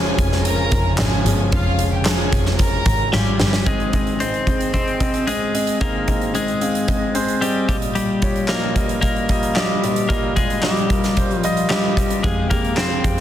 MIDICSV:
0, 0, Header, 1, 7, 480
1, 0, Start_track
1, 0, Key_signature, -4, "major"
1, 0, Tempo, 535714
1, 1368, Time_signature, 4, 2, 24, 8
1, 11829, End_track
2, 0, Start_track
2, 0, Title_t, "Violin section"
2, 0, Program_c, 0, 48
2, 0, Note_on_c, 0, 68, 90
2, 0, Note_on_c, 0, 80, 106
2, 376, Note_off_c, 0, 68, 0
2, 377, Note_off_c, 0, 80, 0
2, 401, Note_on_c, 0, 70, 101
2, 402, Note_on_c, 0, 82, 114
2, 856, Note_off_c, 0, 70, 0
2, 856, Note_off_c, 0, 82, 0
2, 887, Note_on_c, 0, 80, 98
2, 889, Note_on_c, 0, 68, 92
2, 1226, Note_off_c, 0, 80, 0
2, 1227, Note_off_c, 0, 68, 0
2, 1361, Note_on_c, 0, 77, 121
2, 1364, Note_on_c, 0, 65, 111
2, 1703, Note_off_c, 0, 77, 0
2, 1704, Note_off_c, 0, 65, 0
2, 1724, Note_on_c, 0, 67, 74
2, 1724, Note_on_c, 0, 79, 76
2, 1822, Note_off_c, 0, 67, 0
2, 1822, Note_off_c, 0, 79, 0
2, 1842, Note_on_c, 0, 68, 93
2, 1843, Note_on_c, 0, 80, 91
2, 2296, Note_off_c, 0, 68, 0
2, 2297, Note_off_c, 0, 80, 0
2, 2326, Note_on_c, 0, 70, 100
2, 2326, Note_on_c, 0, 82, 113
2, 2778, Note_off_c, 0, 70, 0
2, 2778, Note_off_c, 0, 82, 0
2, 2800, Note_on_c, 0, 80, 99
2, 2802, Note_on_c, 0, 65, 84
2, 3142, Note_off_c, 0, 80, 0
2, 3143, Note_off_c, 0, 65, 0
2, 10967, Note_on_c, 0, 79, 85
2, 10968, Note_on_c, 0, 67, 70
2, 11829, Note_off_c, 0, 67, 0
2, 11829, Note_off_c, 0, 79, 0
2, 11829, End_track
3, 0, Start_track
3, 0, Title_t, "Grand piano"
3, 0, Program_c, 1, 0
3, 0, Control_c, 1, 64, 127
3, 0, Note_on_c, 1, 53, 51
3, 0, Note_on_c, 1, 56, 47
3, 0, Note_on_c, 1, 61, 65
3, 611, Note_off_c, 1, 53, 0
3, 614, Note_off_c, 1, 56, 0
3, 617, Note_off_c, 1, 61, 0
3, 886, Note_on_c, 1, 53, 48
3, 891, Note_on_c, 1, 56, 41
3, 895, Note_on_c, 1, 61, 54
3, 1103, Note_off_c, 1, 53, 0
3, 1106, Note_off_c, 1, 56, 0
3, 1108, Note_off_c, 1, 61, 0
3, 1122, Note_on_c, 1, 53, 57
3, 1128, Note_on_c, 1, 56, 49
3, 1132, Note_on_c, 1, 61, 65
3, 1809, Note_off_c, 1, 53, 0
3, 1812, Note_off_c, 1, 56, 0
3, 1814, Note_off_c, 1, 61, 0
3, 1842, Note_on_c, 1, 53, 49
3, 1846, Note_on_c, 1, 56, 42
3, 1851, Note_on_c, 1, 61, 50
3, 2061, Note_off_c, 1, 53, 0
3, 2063, Note_off_c, 1, 56, 0
3, 2066, Note_off_c, 1, 61, 0
3, 3280, Note_on_c, 1, 60, 64
3, 3284, Note_on_c, 1, 44, 44
3, 3285, Note_on_c, 1, 51, 46
3, 3285, Note_on_c, 1, 68, 62
3, 3290, Note_on_c, 1, 75, 77
3, 3299, Control_c, 1, 64, 0
3, 3485, Control_c, 1, 64, 127
3, 3489, Note_off_c, 1, 60, 0
3, 3492, Note_off_c, 1, 68, 0
3, 3494, Note_off_c, 1, 75, 0
3, 3519, Note_on_c, 1, 60, 59
3, 3523, Note_on_c, 1, 68, 56
3, 3528, Note_on_c, 1, 75, 66
3, 3728, Note_off_c, 1, 60, 0
3, 3730, Note_off_c, 1, 68, 0
3, 3733, Note_off_c, 1, 75, 0
3, 3760, Note_on_c, 1, 60, 53
3, 3767, Note_on_c, 1, 68, 50
3, 3771, Note_on_c, 1, 75, 61
3, 3969, Note_off_c, 1, 60, 0
3, 3970, Note_off_c, 1, 44, 0
3, 3970, Note_off_c, 1, 51, 0
3, 3972, Note_off_c, 1, 68, 0
3, 3975, Note_off_c, 1, 75, 0
3, 4006, Note_on_c, 1, 60, 57
3, 4012, Note_on_c, 1, 68, 50
3, 4015, Note_on_c, 1, 75, 57
3, 4212, Note_off_c, 1, 60, 0
3, 4215, Note_off_c, 1, 68, 0
3, 4216, Note_off_c, 1, 75, 0
3, 4247, Note_on_c, 1, 60, 54
3, 4251, Note_on_c, 1, 68, 48
3, 4255, Note_on_c, 1, 75, 62
3, 4453, Note_off_c, 1, 60, 0
3, 4455, Note_off_c, 1, 68, 0
3, 4457, Note_off_c, 1, 75, 0
3, 4481, Note_on_c, 1, 60, 68
3, 4485, Note_on_c, 1, 68, 65
3, 4491, Note_on_c, 1, 75, 78
3, 4689, Note_off_c, 1, 60, 0
3, 4692, Note_off_c, 1, 68, 0
3, 4695, Note_off_c, 1, 75, 0
3, 4725, Note_on_c, 1, 60, 74
3, 4729, Note_on_c, 1, 68, 69
3, 4733, Note_on_c, 1, 75, 77
3, 4932, Note_off_c, 1, 60, 0
3, 4934, Note_off_c, 1, 68, 0
3, 4936, Note_off_c, 1, 75, 0
3, 4962, Note_on_c, 1, 60, 57
3, 4966, Note_on_c, 1, 68, 57
3, 4972, Note_on_c, 1, 75, 65
3, 5170, Note_off_c, 1, 60, 0
3, 5172, Note_off_c, 1, 68, 0
3, 5175, Note_off_c, 1, 75, 0
3, 5201, Note_on_c, 1, 60, 66
3, 5202, Note_on_c, 1, 44, 50
3, 5203, Note_on_c, 1, 51, 47
3, 5205, Note_on_c, 1, 68, 68
3, 5210, Note_on_c, 1, 75, 78
3, 5410, Note_off_c, 1, 60, 0
3, 5412, Note_off_c, 1, 68, 0
3, 5414, Note_off_c, 1, 75, 0
3, 5442, Note_on_c, 1, 60, 57
3, 5447, Note_on_c, 1, 68, 56
3, 5452, Note_on_c, 1, 75, 66
3, 5650, Note_off_c, 1, 60, 0
3, 5653, Note_off_c, 1, 68, 0
3, 5655, Note_off_c, 1, 75, 0
3, 5679, Note_on_c, 1, 60, 56
3, 5682, Note_on_c, 1, 68, 50
3, 5688, Note_on_c, 1, 75, 57
3, 5889, Note_off_c, 1, 60, 0
3, 5890, Note_off_c, 1, 44, 0
3, 5890, Note_off_c, 1, 51, 0
3, 5890, Note_off_c, 1, 68, 0
3, 5893, Note_off_c, 1, 75, 0
3, 5922, Note_on_c, 1, 60, 56
3, 5928, Note_on_c, 1, 68, 51
3, 5931, Note_on_c, 1, 77, 63
3, 6131, Note_off_c, 1, 60, 0
3, 6133, Note_off_c, 1, 68, 0
3, 6135, Note_off_c, 1, 77, 0
3, 6163, Note_on_c, 1, 60, 58
3, 6167, Note_on_c, 1, 68, 50
3, 6172, Note_on_c, 1, 75, 64
3, 6371, Note_off_c, 1, 60, 0
3, 6373, Note_off_c, 1, 68, 0
3, 6375, Note_off_c, 1, 75, 0
3, 6400, Note_on_c, 1, 60, 83
3, 6406, Note_on_c, 1, 68, 81
3, 6411, Note_on_c, 1, 72, 94
3, 6609, Note_off_c, 1, 60, 0
3, 6613, Note_off_c, 1, 68, 0
3, 6615, Note_off_c, 1, 72, 0
3, 6642, Note_on_c, 1, 60, 75
3, 6647, Note_on_c, 1, 68, 66
3, 6653, Note_on_c, 1, 75, 82
3, 6851, Note_off_c, 1, 60, 0
3, 6853, Note_off_c, 1, 68, 0
3, 6856, Note_off_c, 1, 75, 0
3, 6881, Note_on_c, 1, 53, 52
3, 6887, Note_on_c, 1, 46, 50
3, 6890, Note_on_c, 1, 75, 69
3, 6898, Control_c, 1, 64, 0
3, 6940, Note_on_c, 1, 55, 60
3, 6942, Note_off_c, 1, 53, 0
3, 7074, Control_c, 1, 64, 127
3, 7300, Note_off_c, 1, 75, 0
3, 7325, Note_off_c, 1, 55, 0
3, 7364, Note_on_c, 1, 55, 60
3, 7370, Note_on_c, 1, 65, 54
3, 7373, Note_on_c, 1, 73, 69
3, 7572, Note_off_c, 1, 46, 0
3, 7572, Note_off_c, 1, 55, 0
3, 7575, Note_off_c, 1, 65, 0
3, 7576, Note_off_c, 1, 73, 0
3, 7605, Note_on_c, 1, 55, 58
3, 7612, Note_on_c, 1, 65, 54
3, 7615, Note_on_c, 1, 75, 62
3, 7812, Note_off_c, 1, 55, 0
3, 7815, Note_off_c, 1, 65, 0
3, 7817, Note_off_c, 1, 75, 0
3, 7847, Note_on_c, 1, 55, 56
3, 7853, Note_on_c, 1, 65, 54
3, 7859, Note_on_c, 1, 75, 64
3, 8053, Note_off_c, 1, 55, 0
3, 8056, Note_off_c, 1, 65, 0
3, 8059, Note_off_c, 1, 75, 0
3, 8086, Note_on_c, 1, 55, 58
3, 8090, Note_on_c, 1, 65, 53
3, 8094, Note_on_c, 1, 75, 61
3, 8293, Note_off_c, 1, 55, 0
3, 8295, Note_off_c, 1, 65, 0
3, 8297, Note_off_c, 1, 75, 0
3, 8323, Note_on_c, 1, 55, 80
3, 8328, Note_on_c, 1, 65, 70
3, 8332, Note_on_c, 1, 75, 82
3, 8531, Note_off_c, 1, 55, 0
3, 8534, Note_off_c, 1, 65, 0
3, 8536, Note_off_c, 1, 75, 0
3, 8564, Note_on_c, 1, 55, 78
3, 8569, Note_on_c, 1, 65, 71
3, 8574, Note_on_c, 1, 75, 91
3, 8772, Note_off_c, 1, 55, 0
3, 8774, Note_off_c, 1, 65, 0
3, 8777, Note_off_c, 1, 75, 0
3, 8811, Note_on_c, 1, 55, 62
3, 8814, Note_on_c, 1, 65, 54
3, 8816, Note_on_c, 1, 46, 49
3, 8821, Note_on_c, 1, 75, 67
3, 9015, Note_off_c, 1, 55, 0
3, 9017, Note_off_c, 1, 65, 0
3, 9020, Note_off_c, 1, 75, 0
3, 9047, Note_on_c, 1, 55, 78
3, 9053, Note_on_c, 1, 65, 72
3, 9058, Note_on_c, 1, 75, 81
3, 9253, Note_off_c, 1, 55, 0
3, 9256, Note_off_c, 1, 65, 0
3, 9259, Note_off_c, 1, 75, 0
3, 9290, Note_on_c, 1, 55, 65
3, 9495, Note_off_c, 1, 55, 0
3, 9497, Note_off_c, 1, 46, 0
3, 9530, Note_on_c, 1, 55, 60
3, 9533, Note_on_c, 1, 65, 52
3, 9539, Note_on_c, 1, 75, 63
3, 9735, Note_off_c, 1, 55, 0
3, 9736, Note_off_c, 1, 65, 0
3, 9739, Note_off_c, 1, 75, 0
3, 9770, Note_on_c, 1, 55, 55
3, 9775, Note_on_c, 1, 65, 54
3, 9778, Note_on_c, 1, 70, 59
3, 9975, Note_off_c, 1, 55, 0
3, 9977, Note_off_c, 1, 65, 0
3, 9979, Note_off_c, 1, 70, 0
3, 10010, Note_on_c, 1, 55, 63
3, 10015, Note_on_c, 1, 65, 51
3, 10019, Note_on_c, 1, 72, 67
3, 10215, Note_off_c, 1, 55, 0
3, 10217, Note_off_c, 1, 65, 0
3, 10219, Note_off_c, 1, 72, 0
3, 10249, Note_on_c, 1, 55, 86
3, 10252, Note_on_c, 1, 65, 86
3, 10257, Note_on_c, 1, 75, 102
3, 10454, Note_off_c, 1, 55, 0
3, 10456, Note_off_c, 1, 65, 0
3, 10458, Note_off_c, 1, 75, 0
3, 10488, Note_on_c, 1, 55, 75
3, 10492, Note_on_c, 1, 65, 65
3, 10498, Note_on_c, 1, 75, 82
3, 10694, Note_off_c, 1, 55, 0
3, 10696, Note_off_c, 1, 65, 0
3, 10699, Note_off_c, 1, 75, 0
3, 10726, Note_on_c, 1, 55, 62
3, 10730, Note_on_c, 1, 65, 55
3, 10736, Note_on_c, 1, 75, 70
3, 10933, Note_off_c, 1, 55, 0
3, 10935, Note_off_c, 1, 65, 0
3, 10938, Note_off_c, 1, 75, 0
3, 10964, Note_on_c, 1, 56, 71
3, 10968, Note_on_c, 1, 48, 50
3, 10970, Note_on_c, 1, 67, 61
3, 10976, Note_on_c, 1, 77, 83
3, 10980, Control_c, 1, 64, 0
3, 11155, Control_c, 1, 64, 127
3, 11172, Note_off_c, 1, 56, 0
3, 11175, Note_off_c, 1, 67, 0
3, 11178, Note_off_c, 1, 77, 0
3, 11205, Note_on_c, 1, 56, 62
3, 11211, Note_on_c, 1, 67, 56
3, 11215, Note_on_c, 1, 77, 70
3, 11412, Note_off_c, 1, 56, 0
3, 11415, Note_off_c, 1, 67, 0
3, 11417, Note_off_c, 1, 77, 0
3, 11444, Note_on_c, 1, 56, 58
3, 11447, Note_on_c, 1, 67, 54
3, 11450, Note_on_c, 1, 77, 67
3, 11652, Note_off_c, 1, 56, 0
3, 11653, Note_off_c, 1, 48, 0
3, 11653, Note_off_c, 1, 67, 0
3, 11655, Note_off_c, 1, 77, 0
3, 11684, Note_on_c, 1, 56, 58
3, 11690, Note_on_c, 1, 67, 53
3, 11696, Note_on_c, 1, 77, 65
3, 11829, Note_off_c, 1, 56, 0
3, 11829, Note_off_c, 1, 67, 0
3, 11829, Note_off_c, 1, 77, 0
3, 11829, End_track
4, 0, Start_track
4, 0, Title_t, "String section"
4, 0, Program_c, 2, 48
4, 0, Note_on_c, 2, 49, 83
4, 0, Note_on_c, 2, 53, 68
4, 0, Note_on_c, 2, 65, 70
4, 0, Note_on_c, 2, 80, 89
4, 3251, Note_off_c, 2, 53, 0
4, 3251, Note_off_c, 2, 65, 0
4, 3252, Note_off_c, 2, 80, 0
4, 3253, Note_off_c, 2, 49, 0
4, 11829, End_track
5, 0, Start_track
5, 0, Title_t, "Clean electric guitar"
5, 0, Program_c, 3, 27
5, 2810, Note_on_c, 3, 55, 78
5, 3281, Note_on_c, 3, 56, 66
5, 3303, Note_off_c, 3, 55, 0
5, 3766, Note_on_c, 3, 60, 72
5, 3779, Note_off_c, 3, 56, 0
5, 4234, Note_off_c, 3, 60, 0
5, 4245, Note_on_c, 3, 60, 69
5, 4723, Note_on_c, 3, 56, 66
5, 4741, Note_off_c, 3, 60, 0
5, 5204, Note_off_c, 3, 56, 0
5, 5207, Note_on_c, 3, 58, 71
5, 5687, Note_off_c, 3, 58, 0
5, 5690, Note_on_c, 3, 56, 65
5, 6640, Note_off_c, 3, 56, 0
5, 6643, Note_on_c, 3, 55, 67
5, 6875, Note_off_c, 3, 55, 0
5, 6886, Note_on_c, 3, 55, 70
5, 6951, Note_off_c, 3, 55, 0
5, 7125, Note_on_c, 3, 55, 72
5, 7573, Note_off_c, 3, 55, 0
5, 7605, Note_on_c, 3, 58, 69
5, 8065, Note_off_c, 3, 58, 0
5, 8076, Note_on_c, 3, 58, 78
5, 8560, Note_on_c, 3, 55, 68
5, 8577, Note_off_c, 3, 58, 0
5, 9038, Note_on_c, 3, 58, 73
5, 9059, Note_off_c, 3, 55, 0
5, 9279, Note_off_c, 3, 58, 0
5, 9282, Note_on_c, 3, 56, 73
5, 9517, Note_on_c, 3, 55, 64
5, 9533, Note_off_c, 3, 56, 0
5, 10207, Note_off_c, 3, 55, 0
5, 10207, Note_on_c, 3, 53, 64
5, 10469, Note_off_c, 3, 53, 0
5, 10479, Note_on_c, 3, 55, 68
5, 10961, Note_on_c, 3, 56, 74
5, 10979, Note_off_c, 3, 55, 0
5, 11198, Note_off_c, 3, 56, 0
5, 11202, Note_on_c, 3, 58, 77
5, 11439, Note_on_c, 3, 60, 79
5, 11453, Note_off_c, 3, 58, 0
5, 11829, Note_off_c, 3, 60, 0
5, 11829, End_track
6, 0, Start_track
6, 0, Title_t, "Double bass"
6, 0, Program_c, 4, 43
6, 0, Note_on_c, 4, 29, 93
6, 132, Note_off_c, 4, 29, 0
6, 166, Note_on_c, 4, 29, 93
6, 614, Note_off_c, 4, 29, 0
6, 645, Note_on_c, 4, 29, 87
6, 870, Note_off_c, 4, 29, 0
6, 885, Note_on_c, 4, 32, 86
6, 1110, Note_off_c, 4, 32, 0
6, 1123, Note_on_c, 4, 31, 91
6, 1362, Note_off_c, 4, 31, 0
6, 1367, Note_on_c, 4, 29, 107
6, 2052, Note_off_c, 4, 29, 0
6, 2082, Note_on_c, 4, 29, 85
6, 2531, Note_off_c, 4, 29, 0
6, 2563, Note_on_c, 4, 32, 85
6, 2788, Note_off_c, 4, 32, 0
6, 2804, Note_on_c, 4, 32, 85
6, 3029, Note_off_c, 4, 32, 0
6, 3046, Note_on_c, 4, 31, 85
6, 3270, Note_off_c, 4, 31, 0
6, 10969, Note_on_c, 4, 41, 85
6, 11653, Note_off_c, 4, 41, 0
6, 11686, Note_on_c, 4, 41, 75
6, 11829, Note_off_c, 4, 41, 0
6, 11829, End_track
7, 0, Start_track
7, 0, Title_t, "Drums"
7, 165, Note_on_c, 9, 42, 69
7, 167, Note_on_c, 9, 36, 83
7, 255, Note_off_c, 9, 42, 0
7, 256, Note_off_c, 9, 36, 0
7, 288, Note_on_c, 9, 38, 35
7, 377, Note_off_c, 9, 38, 0
7, 404, Note_on_c, 9, 42, 81
7, 494, Note_off_c, 9, 42, 0
7, 642, Note_on_c, 9, 42, 81
7, 645, Note_on_c, 9, 36, 102
7, 731, Note_off_c, 9, 42, 0
7, 735, Note_off_c, 9, 36, 0
7, 876, Note_on_c, 9, 39, 86
7, 883, Note_on_c, 9, 42, 74
7, 884, Note_on_c, 9, 38, 105
7, 966, Note_off_c, 9, 39, 0
7, 972, Note_off_c, 9, 42, 0
7, 973, Note_off_c, 9, 38, 0
7, 1128, Note_on_c, 9, 42, 79
7, 1218, Note_off_c, 9, 42, 0
7, 1364, Note_on_c, 9, 42, 75
7, 1366, Note_on_c, 9, 36, 126
7, 1454, Note_off_c, 9, 42, 0
7, 1456, Note_off_c, 9, 36, 0
7, 1601, Note_on_c, 9, 42, 72
7, 1691, Note_off_c, 9, 42, 0
7, 1836, Note_on_c, 9, 39, 75
7, 1843, Note_on_c, 9, 42, 85
7, 1844, Note_on_c, 9, 38, 99
7, 1926, Note_off_c, 9, 39, 0
7, 1933, Note_off_c, 9, 42, 0
7, 1934, Note_off_c, 9, 38, 0
7, 2082, Note_on_c, 9, 42, 63
7, 2084, Note_on_c, 9, 36, 79
7, 2172, Note_off_c, 9, 42, 0
7, 2173, Note_off_c, 9, 36, 0
7, 2203, Note_on_c, 9, 38, 35
7, 2293, Note_off_c, 9, 38, 0
7, 2320, Note_on_c, 9, 42, 75
7, 2325, Note_on_c, 9, 36, 78
7, 2410, Note_off_c, 9, 42, 0
7, 2414, Note_off_c, 9, 36, 0
7, 2560, Note_on_c, 9, 42, 83
7, 2562, Note_on_c, 9, 36, 100
7, 2650, Note_off_c, 9, 42, 0
7, 2652, Note_off_c, 9, 36, 0
7, 2802, Note_on_c, 9, 38, 55
7, 2891, Note_off_c, 9, 38, 0
7, 3042, Note_on_c, 9, 38, 89
7, 3132, Note_off_c, 9, 38, 0
7, 3163, Note_on_c, 9, 38, 85
7, 3253, Note_off_c, 9, 38, 0
7, 3282, Note_on_c, 9, 42, 57
7, 3284, Note_on_c, 9, 36, 91
7, 3371, Note_off_c, 9, 42, 0
7, 3373, Note_off_c, 9, 36, 0
7, 3405, Note_on_c, 9, 42, 26
7, 3494, Note_off_c, 9, 42, 0
7, 3522, Note_on_c, 9, 42, 57
7, 3525, Note_on_c, 9, 36, 74
7, 3612, Note_off_c, 9, 42, 0
7, 3615, Note_off_c, 9, 36, 0
7, 3646, Note_on_c, 9, 42, 33
7, 3735, Note_off_c, 9, 42, 0
7, 3765, Note_on_c, 9, 42, 60
7, 3854, Note_off_c, 9, 42, 0
7, 3887, Note_on_c, 9, 42, 25
7, 3977, Note_off_c, 9, 42, 0
7, 4005, Note_on_c, 9, 36, 67
7, 4006, Note_on_c, 9, 42, 50
7, 4094, Note_off_c, 9, 36, 0
7, 4096, Note_off_c, 9, 42, 0
7, 4126, Note_on_c, 9, 42, 43
7, 4216, Note_off_c, 9, 42, 0
7, 4244, Note_on_c, 9, 42, 58
7, 4246, Note_on_c, 9, 36, 59
7, 4333, Note_off_c, 9, 42, 0
7, 4336, Note_off_c, 9, 36, 0
7, 4368, Note_on_c, 9, 42, 27
7, 4458, Note_off_c, 9, 42, 0
7, 4483, Note_on_c, 9, 42, 68
7, 4484, Note_on_c, 9, 36, 78
7, 4573, Note_off_c, 9, 42, 0
7, 4574, Note_off_c, 9, 36, 0
7, 4604, Note_on_c, 9, 42, 44
7, 4693, Note_off_c, 9, 42, 0
7, 4726, Note_on_c, 9, 42, 65
7, 4816, Note_off_c, 9, 42, 0
7, 4970, Note_on_c, 9, 42, 62
7, 5060, Note_off_c, 9, 42, 0
7, 5082, Note_on_c, 9, 42, 48
7, 5171, Note_off_c, 9, 42, 0
7, 5205, Note_on_c, 9, 42, 59
7, 5207, Note_on_c, 9, 36, 92
7, 5294, Note_off_c, 9, 42, 0
7, 5296, Note_off_c, 9, 36, 0
7, 5445, Note_on_c, 9, 42, 61
7, 5447, Note_on_c, 9, 36, 70
7, 5534, Note_off_c, 9, 42, 0
7, 5537, Note_off_c, 9, 36, 0
7, 5568, Note_on_c, 9, 42, 35
7, 5658, Note_off_c, 9, 42, 0
7, 5686, Note_on_c, 9, 42, 60
7, 5776, Note_off_c, 9, 42, 0
7, 5808, Note_on_c, 9, 42, 26
7, 5898, Note_off_c, 9, 42, 0
7, 5926, Note_on_c, 9, 42, 51
7, 6016, Note_off_c, 9, 42, 0
7, 6048, Note_on_c, 9, 42, 43
7, 6138, Note_off_c, 9, 42, 0
7, 6165, Note_on_c, 9, 42, 62
7, 6168, Note_on_c, 9, 36, 63
7, 6254, Note_off_c, 9, 42, 0
7, 6257, Note_off_c, 9, 36, 0
7, 6406, Note_on_c, 9, 42, 66
7, 6495, Note_off_c, 9, 42, 0
7, 6526, Note_on_c, 9, 42, 43
7, 6616, Note_off_c, 9, 42, 0
7, 6649, Note_on_c, 9, 42, 66
7, 6738, Note_off_c, 9, 42, 0
7, 6887, Note_on_c, 9, 36, 88
7, 6893, Note_on_c, 9, 42, 65
7, 6977, Note_off_c, 9, 36, 0
7, 6982, Note_off_c, 9, 42, 0
7, 7006, Note_on_c, 9, 42, 47
7, 7096, Note_off_c, 9, 42, 0
7, 7127, Note_on_c, 9, 42, 62
7, 7217, Note_off_c, 9, 42, 0
7, 7364, Note_on_c, 9, 42, 58
7, 7369, Note_on_c, 9, 36, 70
7, 7454, Note_off_c, 9, 42, 0
7, 7458, Note_off_c, 9, 36, 0
7, 7488, Note_on_c, 9, 42, 34
7, 7577, Note_off_c, 9, 42, 0
7, 7598, Note_on_c, 9, 39, 61
7, 7605, Note_on_c, 9, 38, 81
7, 7687, Note_off_c, 9, 39, 0
7, 7695, Note_off_c, 9, 38, 0
7, 7847, Note_on_c, 9, 36, 71
7, 7847, Note_on_c, 9, 42, 54
7, 7936, Note_off_c, 9, 42, 0
7, 7937, Note_off_c, 9, 36, 0
7, 7967, Note_on_c, 9, 42, 45
7, 8057, Note_off_c, 9, 42, 0
7, 8085, Note_on_c, 9, 42, 67
7, 8088, Note_on_c, 9, 36, 67
7, 8175, Note_off_c, 9, 42, 0
7, 8178, Note_off_c, 9, 36, 0
7, 8210, Note_on_c, 9, 42, 27
7, 8299, Note_off_c, 9, 42, 0
7, 8324, Note_on_c, 9, 42, 68
7, 8327, Note_on_c, 9, 36, 81
7, 8414, Note_off_c, 9, 42, 0
7, 8416, Note_off_c, 9, 36, 0
7, 8447, Note_on_c, 9, 42, 45
7, 8537, Note_off_c, 9, 42, 0
7, 8562, Note_on_c, 9, 39, 70
7, 8570, Note_on_c, 9, 38, 86
7, 8652, Note_off_c, 9, 39, 0
7, 8660, Note_off_c, 9, 38, 0
7, 8813, Note_on_c, 9, 42, 64
7, 8903, Note_off_c, 9, 42, 0
7, 8926, Note_on_c, 9, 42, 50
7, 9016, Note_off_c, 9, 42, 0
7, 9048, Note_on_c, 9, 42, 64
7, 9049, Note_on_c, 9, 36, 92
7, 9138, Note_off_c, 9, 42, 0
7, 9139, Note_off_c, 9, 36, 0
7, 9286, Note_on_c, 9, 42, 61
7, 9289, Note_on_c, 9, 36, 71
7, 9376, Note_off_c, 9, 42, 0
7, 9379, Note_off_c, 9, 36, 0
7, 9409, Note_on_c, 9, 42, 39
7, 9499, Note_off_c, 9, 42, 0
7, 9519, Note_on_c, 9, 39, 65
7, 9527, Note_on_c, 9, 38, 77
7, 9609, Note_off_c, 9, 39, 0
7, 9617, Note_off_c, 9, 38, 0
7, 9649, Note_on_c, 9, 42, 27
7, 9738, Note_off_c, 9, 42, 0
7, 9766, Note_on_c, 9, 42, 58
7, 9767, Note_on_c, 9, 36, 70
7, 9856, Note_off_c, 9, 42, 0
7, 9857, Note_off_c, 9, 36, 0
7, 9890, Note_on_c, 9, 38, 29
7, 9890, Note_on_c, 9, 42, 46
7, 9979, Note_off_c, 9, 38, 0
7, 9979, Note_off_c, 9, 42, 0
7, 10006, Note_on_c, 9, 42, 67
7, 10009, Note_on_c, 9, 36, 70
7, 10096, Note_off_c, 9, 42, 0
7, 10099, Note_off_c, 9, 36, 0
7, 10131, Note_on_c, 9, 42, 30
7, 10221, Note_off_c, 9, 42, 0
7, 10246, Note_on_c, 9, 42, 63
7, 10335, Note_off_c, 9, 42, 0
7, 10366, Note_on_c, 9, 42, 46
7, 10456, Note_off_c, 9, 42, 0
7, 10480, Note_on_c, 9, 39, 71
7, 10488, Note_on_c, 9, 38, 81
7, 10570, Note_off_c, 9, 39, 0
7, 10577, Note_off_c, 9, 38, 0
7, 10726, Note_on_c, 9, 36, 73
7, 10734, Note_on_c, 9, 42, 69
7, 10815, Note_off_c, 9, 36, 0
7, 10824, Note_off_c, 9, 42, 0
7, 10845, Note_on_c, 9, 42, 47
7, 10935, Note_off_c, 9, 42, 0
7, 10967, Note_on_c, 9, 42, 64
7, 10968, Note_on_c, 9, 36, 105
7, 11056, Note_off_c, 9, 42, 0
7, 11058, Note_off_c, 9, 36, 0
7, 11206, Note_on_c, 9, 42, 57
7, 11209, Note_on_c, 9, 36, 77
7, 11295, Note_off_c, 9, 42, 0
7, 11299, Note_off_c, 9, 36, 0
7, 11329, Note_on_c, 9, 42, 35
7, 11419, Note_off_c, 9, 42, 0
7, 11440, Note_on_c, 9, 39, 65
7, 11448, Note_on_c, 9, 38, 83
7, 11530, Note_off_c, 9, 39, 0
7, 11537, Note_off_c, 9, 38, 0
7, 11687, Note_on_c, 9, 36, 69
7, 11687, Note_on_c, 9, 42, 57
7, 11777, Note_off_c, 9, 36, 0
7, 11777, Note_off_c, 9, 42, 0
7, 11829, End_track
0, 0, End_of_file